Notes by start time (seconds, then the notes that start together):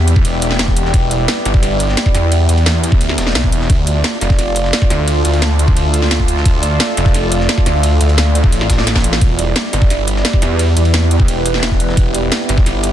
Already playing: E2 B3 E4 G4 B4 D5 E5 G5
0.08 G3 E4 D5, closed hi-hat, ride
0.16 kick
0.25 E1, closed hi-hat, ride
0.42 closed hi-hat, ride
0.51 snare
0.59 snare, closed hi-hat, ride
0.68 kick, snare
0.76 closed hi-hat, ride
0.85 snare
0.94 E1, kick, closed hi-hat, ride
1.11 G3 E4 D5, closed hi-hat, ride
1.28 snare, closed hi-hat, ride
1.37 snare
1.45 G1 G3 E4 D5, snare, closed hi-hat, ride
1.54 kick, snare
1.63 snare, closed hi-hat, ride
1.80 closed hi-hat, ride
1.89 snare
1.97 snare, closed hi-hat, ride
2.06 kick, snare
2.14 E2, snare, closed hi-hat, ride
2.32 closed hi-hat, ride
2.49 E2 G3 E4 D5, closed hi-hat, ride
2.58 ride
2.66 snare, closed hi-hat, ride
2.84 closed hi-hat, ride
2.92 kick
3.01 D2, closed hi-hat, ride
3.09 snare
3.18 E1, snare, closed hi-hat, ride
3.27 snare
3.35 B1, snare, closed hi-hat, ride
3.44 kick, snare
3.52 E1, closed hi-hat, ride
3.61 snare
3.70 D2 A3 F4 D5 F5, kick, closed hi-hat, ride
3.85 A3 F4 A4 D5, closed hi-hat, ride
4.04 A5, snare, closed hi-hat, ride
4.13 snare
4.21 F1 A3 F4 D5, snare, closed hi-hat, ride
4.30 kick, snare
4.39 snare, closed hi-hat, ride
4.56 closed hi-hat, ride
4.64 snare
4.73 snare, closed hi-hat, ride
4.82 kick, snare
4.90 D2, snare, closed hi-hat, ride
5.08 closed hi-hat, ride
5.25 D2 A3 F4 D5, closed hi-hat, ride
5.33 ride
5.42 snare, closed hi-hat, ride
5.59 A3 F4 D5, closed hi-hat, ride
5.68 kick
5.77 D2, closed hi-hat, ride
5.94 closed hi-hat, ride
6.02 snare
6.11 snare, closed hi-hat, ride
6.20 kick, snare
6.28 closed hi-hat, ride
6.37 snare
6.45 D2, kick, closed hi-hat, ride
6.63 A3 F4 D5, closed hi-hat, ride
6.80 snare, closed hi-hat, ride
6.89 snare
6.97 F1 A3, snare, closed hi-hat, ride
7.06 kick, snare
7.14 snare, closed hi-hat, ride
7.32 closed hi-hat, ride
7.40 snare
7.49 snare, closed hi-hat, ride
7.58 kick, snare
7.66 D2, snare, closed hi-hat, ride
7.83 closed hi-hat, ride
8.01 D2 A3 F4 D5, closed hi-hat, ride
8.09 ride
8.18 snare, closed hi-hat, ride
8.35 A3 F4 D5, closed hi-hat, ride
8.44 kick
8.52 A1, closed hi-hat, ride
8.61 snare
8.70 kick, snare, closed hi-hat, ride
8.78 A3 F4 D5, snare
8.87 snare, closed hi-hat, ride
8.95 kick, snare
9.04 closed hi-hat, ride
9.13 snare
9.21 E1 B3 E4 G4 D5 E5, kick, closed hi-hat, ride
9.30 B4
9.39 G3 E4 D5, closed hi-hat, ride
9.56 snare, closed hi-hat, ride
9.64 D5, snare
9.73 G1 G3 E4 D5, snare, closed hi-hat, ride
9.82 kick, snare
9.90 snare, closed hi-hat, ride
10.07 closed hi-hat, ride
10.13 G5, snare
10.25 snare, closed hi-hat, ride
10.33 kick, snare
10.42 E2, snare, closed hi-hat, ride
10.59 closed hi-hat, ride
10.76 E2 G3 E4 D5, closed hi-hat, ride
10.85 ride
10.94 snare, closed hi-hat, ride
11.11 G3 E4 D5, closed hi-hat, ride
11.20 kick
11.28 E1, closed hi-hat, ride
11.46 closed hi-hat, ride
11.54 snare
11.63 snare, closed hi-hat, ride
11.71 kick, snare
11.80 closed hi-hat, ride
11.89 snare
11.97 E1, kick, closed hi-hat, ride
12.14 G3 E4 D5, closed hi-hat, ride
12.32 snare, closed hi-hat, ride
12.40 snare
12.49 G1 G3 E4 D5, snare, closed hi-hat, ride
12.58 kick, snare
12.66 snare, closed hi-hat, ride
12.83 closed hi-hat, ride